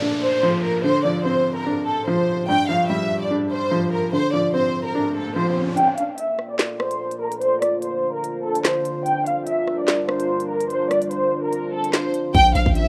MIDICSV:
0, 0, Header, 1, 8, 480
1, 0, Start_track
1, 0, Key_signature, -1, "minor"
1, 0, Tempo, 410959
1, 980, Time_signature, 4, 2, 24, 8
1, 15045, End_track
2, 0, Start_track
2, 0, Title_t, "Violin section"
2, 0, Program_c, 0, 48
2, 264, Note_on_c, 0, 72, 89
2, 714, Note_off_c, 0, 72, 0
2, 743, Note_on_c, 0, 70, 75
2, 940, Note_off_c, 0, 70, 0
2, 975, Note_on_c, 0, 72, 102
2, 1175, Note_off_c, 0, 72, 0
2, 1219, Note_on_c, 0, 74, 78
2, 1418, Note_off_c, 0, 74, 0
2, 1458, Note_on_c, 0, 72, 81
2, 1804, Note_off_c, 0, 72, 0
2, 1826, Note_on_c, 0, 70, 70
2, 2158, Note_off_c, 0, 70, 0
2, 2178, Note_on_c, 0, 69, 85
2, 2377, Note_off_c, 0, 69, 0
2, 2419, Note_on_c, 0, 72, 80
2, 2871, Note_off_c, 0, 72, 0
2, 2897, Note_on_c, 0, 79, 101
2, 3097, Note_off_c, 0, 79, 0
2, 3139, Note_on_c, 0, 77, 79
2, 3338, Note_off_c, 0, 77, 0
2, 3376, Note_on_c, 0, 76, 82
2, 3723, Note_off_c, 0, 76, 0
2, 3748, Note_on_c, 0, 74, 78
2, 3841, Note_off_c, 0, 74, 0
2, 4102, Note_on_c, 0, 72, 88
2, 4552, Note_off_c, 0, 72, 0
2, 4583, Note_on_c, 0, 70, 78
2, 4780, Note_off_c, 0, 70, 0
2, 4821, Note_on_c, 0, 72, 106
2, 5019, Note_off_c, 0, 72, 0
2, 5060, Note_on_c, 0, 74, 79
2, 5258, Note_off_c, 0, 74, 0
2, 5307, Note_on_c, 0, 72, 85
2, 5649, Note_off_c, 0, 72, 0
2, 5673, Note_on_c, 0, 70, 72
2, 6002, Note_off_c, 0, 70, 0
2, 6027, Note_on_c, 0, 69, 80
2, 6222, Note_off_c, 0, 69, 0
2, 6259, Note_on_c, 0, 72, 80
2, 6458, Note_off_c, 0, 72, 0
2, 6733, Note_on_c, 0, 79, 116
2, 6934, Note_off_c, 0, 79, 0
2, 6977, Note_on_c, 0, 77, 81
2, 7177, Note_off_c, 0, 77, 0
2, 7214, Note_on_c, 0, 76, 80
2, 7562, Note_off_c, 0, 76, 0
2, 7589, Note_on_c, 0, 74, 80
2, 7681, Note_off_c, 0, 74, 0
2, 7943, Note_on_c, 0, 72, 91
2, 8393, Note_off_c, 0, 72, 0
2, 8422, Note_on_c, 0, 70, 77
2, 8620, Note_off_c, 0, 70, 0
2, 8655, Note_on_c, 0, 72, 102
2, 8855, Note_off_c, 0, 72, 0
2, 8899, Note_on_c, 0, 74, 78
2, 9098, Note_off_c, 0, 74, 0
2, 9138, Note_on_c, 0, 72, 84
2, 9484, Note_off_c, 0, 72, 0
2, 9504, Note_on_c, 0, 70, 73
2, 9837, Note_off_c, 0, 70, 0
2, 9858, Note_on_c, 0, 69, 86
2, 10057, Note_off_c, 0, 69, 0
2, 10099, Note_on_c, 0, 72, 82
2, 10551, Note_off_c, 0, 72, 0
2, 10577, Note_on_c, 0, 79, 101
2, 10776, Note_off_c, 0, 79, 0
2, 10819, Note_on_c, 0, 77, 76
2, 11018, Note_off_c, 0, 77, 0
2, 11055, Note_on_c, 0, 76, 87
2, 11403, Note_off_c, 0, 76, 0
2, 11428, Note_on_c, 0, 74, 80
2, 11521, Note_off_c, 0, 74, 0
2, 11782, Note_on_c, 0, 72, 90
2, 12233, Note_off_c, 0, 72, 0
2, 12263, Note_on_c, 0, 70, 81
2, 12460, Note_off_c, 0, 70, 0
2, 12501, Note_on_c, 0, 72, 110
2, 12699, Note_off_c, 0, 72, 0
2, 12741, Note_on_c, 0, 74, 82
2, 12939, Note_off_c, 0, 74, 0
2, 12987, Note_on_c, 0, 72, 89
2, 13329, Note_off_c, 0, 72, 0
2, 13354, Note_on_c, 0, 70, 72
2, 13682, Note_off_c, 0, 70, 0
2, 13706, Note_on_c, 0, 69, 81
2, 13902, Note_off_c, 0, 69, 0
2, 13939, Note_on_c, 0, 72, 81
2, 14138, Note_off_c, 0, 72, 0
2, 14413, Note_on_c, 0, 79, 115
2, 14614, Note_off_c, 0, 79, 0
2, 14658, Note_on_c, 0, 77, 80
2, 14857, Note_off_c, 0, 77, 0
2, 14895, Note_on_c, 0, 76, 82
2, 15045, Note_off_c, 0, 76, 0
2, 15045, End_track
3, 0, Start_track
3, 0, Title_t, "Ambient pad"
3, 0, Program_c, 1, 92
3, 6741, Note_on_c, 1, 58, 81
3, 6741, Note_on_c, 1, 65, 76
3, 6741, Note_on_c, 1, 69, 72
3, 6741, Note_on_c, 1, 74, 86
3, 8641, Note_off_c, 1, 58, 0
3, 8641, Note_off_c, 1, 69, 0
3, 8641, Note_off_c, 1, 74, 0
3, 8660, Note_on_c, 1, 72, 90
3, 8661, Note_on_c, 1, 50, 80
3, 8661, Note_on_c, 1, 62, 73
3, 10561, Note_off_c, 1, 50, 0
3, 10561, Note_off_c, 1, 72, 0
3, 10581, Note_on_c, 1, 55, 81
3, 10581, Note_on_c, 1, 70, 89
3, 12481, Note_off_c, 1, 55, 0
3, 12481, Note_off_c, 1, 70, 0
3, 12500, Note_on_c, 1, 50, 81
3, 12500, Note_on_c, 1, 72, 89
3, 14374, Note_off_c, 1, 62, 0
3, 14401, Note_off_c, 1, 50, 0
3, 14401, Note_off_c, 1, 72, 0
3, 14420, Note_on_c, 1, 58, 82
3, 14420, Note_on_c, 1, 74, 88
3, 14421, Note_on_c, 1, 69, 77
3, 15045, Note_off_c, 1, 58, 0
3, 15045, Note_off_c, 1, 65, 0
3, 15045, Note_off_c, 1, 69, 0
3, 15045, Note_off_c, 1, 74, 0
3, 15045, End_track
4, 0, Start_track
4, 0, Title_t, "Felt piano"
4, 0, Program_c, 2, 0
4, 0, Control_c, 2, 64, 127
4, 0, Note_on_c, 2, 46, 85
4, 0, Note_on_c, 2, 53, 65
4, 0, Note_on_c, 2, 57, 87
4, 23, Note_on_c, 2, 62, 80
4, 260, Note_off_c, 2, 46, 0
4, 484, Note_off_c, 2, 53, 0
4, 502, Note_on_c, 2, 53, 86
4, 741, Note_off_c, 2, 57, 0
4, 981, Note_off_c, 2, 53, 0
4, 981, Note_on_c, 2, 50, 84
4, 982, Note_off_c, 2, 62, 0
4, 996, Control_c, 2, 64, 0
4, 1223, Note_on_c, 2, 53, 72
4, 1235, Control_c, 2, 64, 127
4, 1460, Note_on_c, 2, 60, 80
4, 1941, Note_on_c, 2, 62, 82
4, 2181, Note_off_c, 2, 50, 0
4, 2405, Note_off_c, 2, 53, 0
4, 2422, Note_on_c, 2, 53, 88
4, 2660, Note_off_c, 2, 60, 0
4, 2901, Note_off_c, 2, 62, 0
4, 2902, Note_off_c, 2, 53, 0
4, 2902, Note_on_c, 2, 43, 86
4, 2913, Control_c, 2, 64, 0
4, 3124, Control_c, 2, 64, 127
4, 3140, Note_on_c, 2, 53, 72
4, 3383, Note_on_c, 2, 55, 76
4, 3860, Note_on_c, 2, 62, 81
4, 4101, Note_off_c, 2, 43, 0
4, 4320, Note_off_c, 2, 53, 0
4, 4337, Note_on_c, 2, 53, 87
4, 4582, Note_off_c, 2, 55, 0
4, 4819, Note_off_c, 2, 53, 0
4, 4820, Note_off_c, 2, 62, 0
4, 4821, Note_on_c, 2, 50, 75
4, 4838, Control_c, 2, 64, 0
4, 5025, Control_c, 2, 64, 127
4, 5061, Note_on_c, 2, 53, 70
4, 5300, Note_on_c, 2, 60, 80
4, 5779, Note_on_c, 2, 62, 84
4, 6021, Note_off_c, 2, 50, 0
4, 6243, Note_off_c, 2, 53, 0
4, 6261, Note_on_c, 2, 53, 84
4, 6500, Note_off_c, 2, 60, 0
4, 6740, Note_off_c, 2, 62, 0
4, 6741, Note_off_c, 2, 53, 0
4, 6754, Control_c, 2, 64, 0
4, 15045, End_track
5, 0, Start_track
5, 0, Title_t, "808-style bass"
5, 0, Program_c, 3, 38
5, 14420, Note_on_c, 3, 34, 110
5, 14651, Note_off_c, 3, 34, 0
5, 14660, Note_on_c, 3, 34, 99
5, 14783, Note_off_c, 3, 34, 0
5, 14787, Note_on_c, 3, 33, 105
5, 15045, Note_off_c, 3, 33, 0
5, 15045, End_track
6, 0, Start_track
6, 0, Title_t, "Downlifter"
6, 0, Program_c, 4, 103
6, 0, Note_on_c, 4, 60, 82
6, 2900, Note_off_c, 4, 60, 0
6, 15045, End_track
7, 0, Start_track
7, 0, Title_t, "Riser"
7, 0, Program_c, 5, 103
7, 4820, Note_on_c, 5, 60, 81
7, 6740, Note_off_c, 5, 60, 0
7, 15045, End_track
8, 0, Start_track
8, 0, Title_t, "Drums"
8, 6740, Note_on_c, 9, 42, 72
8, 6857, Note_off_c, 9, 42, 0
8, 6980, Note_on_c, 9, 42, 80
8, 7097, Note_off_c, 9, 42, 0
8, 7216, Note_on_c, 9, 42, 84
8, 7332, Note_off_c, 9, 42, 0
8, 7460, Note_on_c, 9, 37, 65
8, 7576, Note_off_c, 9, 37, 0
8, 7700, Note_on_c, 9, 38, 118
8, 7701, Note_on_c, 9, 39, 96
8, 7702, Note_on_c, 9, 42, 77
8, 7817, Note_off_c, 9, 38, 0
8, 7818, Note_off_c, 9, 39, 0
8, 7819, Note_off_c, 9, 42, 0
8, 7941, Note_on_c, 9, 37, 106
8, 8057, Note_off_c, 9, 37, 0
8, 8070, Note_on_c, 9, 42, 90
8, 8186, Note_off_c, 9, 42, 0
8, 8308, Note_on_c, 9, 42, 67
8, 8425, Note_off_c, 9, 42, 0
8, 8546, Note_on_c, 9, 42, 95
8, 8660, Note_off_c, 9, 42, 0
8, 8660, Note_on_c, 9, 42, 70
8, 8777, Note_off_c, 9, 42, 0
8, 8901, Note_on_c, 9, 37, 91
8, 8901, Note_on_c, 9, 42, 77
8, 9017, Note_off_c, 9, 42, 0
8, 9018, Note_off_c, 9, 37, 0
8, 9136, Note_on_c, 9, 42, 83
8, 9253, Note_off_c, 9, 42, 0
8, 9623, Note_on_c, 9, 42, 78
8, 9740, Note_off_c, 9, 42, 0
8, 9990, Note_on_c, 9, 42, 91
8, 10098, Note_off_c, 9, 42, 0
8, 10098, Note_on_c, 9, 42, 76
8, 10101, Note_on_c, 9, 38, 119
8, 10102, Note_on_c, 9, 39, 95
8, 10215, Note_off_c, 9, 42, 0
8, 10217, Note_off_c, 9, 38, 0
8, 10218, Note_off_c, 9, 39, 0
8, 10339, Note_on_c, 9, 42, 80
8, 10456, Note_off_c, 9, 42, 0
8, 10581, Note_on_c, 9, 42, 68
8, 10697, Note_off_c, 9, 42, 0
8, 10821, Note_on_c, 9, 42, 79
8, 10938, Note_off_c, 9, 42, 0
8, 11056, Note_on_c, 9, 42, 84
8, 11173, Note_off_c, 9, 42, 0
8, 11300, Note_on_c, 9, 37, 66
8, 11417, Note_off_c, 9, 37, 0
8, 11540, Note_on_c, 9, 38, 115
8, 11541, Note_on_c, 9, 39, 95
8, 11543, Note_on_c, 9, 42, 79
8, 11657, Note_off_c, 9, 38, 0
8, 11658, Note_off_c, 9, 39, 0
8, 11660, Note_off_c, 9, 42, 0
8, 11781, Note_on_c, 9, 37, 108
8, 11898, Note_off_c, 9, 37, 0
8, 11910, Note_on_c, 9, 42, 89
8, 12027, Note_off_c, 9, 42, 0
8, 12148, Note_on_c, 9, 42, 69
8, 12265, Note_off_c, 9, 42, 0
8, 12386, Note_on_c, 9, 42, 95
8, 12500, Note_off_c, 9, 42, 0
8, 12500, Note_on_c, 9, 42, 71
8, 12617, Note_off_c, 9, 42, 0
8, 12741, Note_on_c, 9, 37, 96
8, 12741, Note_on_c, 9, 42, 48
8, 12858, Note_off_c, 9, 37, 0
8, 12858, Note_off_c, 9, 42, 0
8, 12868, Note_on_c, 9, 42, 85
8, 12976, Note_off_c, 9, 42, 0
8, 12976, Note_on_c, 9, 42, 84
8, 13093, Note_off_c, 9, 42, 0
8, 13462, Note_on_c, 9, 42, 80
8, 13579, Note_off_c, 9, 42, 0
8, 13829, Note_on_c, 9, 42, 92
8, 13938, Note_off_c, 9, 42, 0
8, 13938, Note_on_c, 9, 42, 72
8, 13940, Note_on_c, 9, 38, 112
8, 13941, Note_on_c, 9, 39, 95
8, 14055, Note_off_c, 9, 42, 0
8, 14057, Note_off_c, 9, 38, 0
8, 14058, Note_off_c, 9, 39, 0
8, 14179, Note_on_c, 9, 42, 79
8, 14296, Note_off_c, 9, 42, 0
8, 14420, Note_on_c, 9, 36, 111
8, 14420, Note_on_c, 9, 42, 70
8, 14537, Note_off_c, 9, 36, 0
8, 14537, Note_off_c, 9, 42, 0
8, 14660, Note_on_c, 9, 42, 79
8, 14777, Note_off_c, 9, 42, 0
8, 14787, Note_on_c, 9, 36, 94
8, 14896, Note_on_c, 9, 42, 84
8, 14904, Note_off_c, 9, 36, 0
8, 15012, Note_off_c, 9, 42, 0
8, 15045, End_track
0, 0, End_of_file